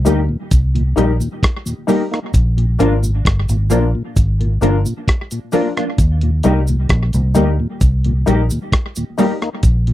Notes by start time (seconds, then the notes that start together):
0.05 D2 G3 A#3 D#4 G4 A#4, closed hi-hat, cabasa
0.29 D#2 A#2
0.51 C2, kick, closed hi-hat, cabasa
0.75 D#2 A#2, closed hi-hat
0.96 A#1 G3 A#3 D#4 G4 A#4, closed hi-hat, cabasa
1.20 D#2 A#2, cabasa
1.43 kick, cross-stick, closed hi-hat
1.66 D#2 A#2, closed hi-hat, cabasa
1.87 G3 A#3 D#4 G4 A#4, open hi-hat, cabasa
2.11 A#3 D#4, cross-stick, closed hi-hat
2.34 A#1, kick, closed hi-hat, cabasa
2.57 A#2, closed hi-hat
2.79 G#1 F3 A#3 D4 F4 A#4, closed hi-hat, cabasa
3.03 A#2, cabasa
3.25 G1, kick, cross-stick, closed hi-hat
3.49 G#1 A#2, closed hi-hat, cabasa
3.70 A#1 F3 A#3 D4 F4 A#4, closed hi-hat, cabasa
3.95 A#2
4.16 G#1, kick, closed hi-hat, cabasa
4.40 A#2 F4 A#4, closed hi-hat
4.61 G1 F3 A#3 D4 F4 A#4, closed hi-hat, cabasa
4.86 A#2, cabasa
5.08 kick, cross-stick, closed hi-hat
5.31 A#2, closed hi-hat, cabasa
5.52 F3 A#3 D4 F4 A#4, open hi-hat, cabasa
5.77 F3 A#3 D4 F4, cross-stick, closed hi-hat
5.98 D#2, kick, closed hi-hat, cabasa
6.21 D#2 A#2, closed hi-hat
6.43 C2 G3 A#3 D#4 G4 A#4, closed hi-hat, cabasa
6.67 D#2 A#2, cabasa
6.89 A#1, kick, cross-stick, closed hi-hat
7.13 C2 D#2 A#2, closed hi-hat, cabasa
7.35 D2 G3 A#3 D#4 G4 A#4, closed hi-hat, cabasa
7.60 D#2 A#2
7.81 C2, kick, closed hi-hat, cabasa
8.04 D#2 A#2, closed hi-hat
8.26 A#1 G3 A#3 D#4 G4 A#4, closed hi-hat, cabasa
8.50 D#2 A#2, cabasa
8.72 kick, cross-stick, closed hi-hat
8.96 D#2 A#2, closed hi-hat, cabasa
9.18 G3 A#3 D#4 G4 A#4, open hi-hat, cabasa
9.42 A#3 D#4, cross-stick, closed hi-hat
9.63 A#1, kick, closed hi-hat, cabasa
9.87 A#2, closed hi-hat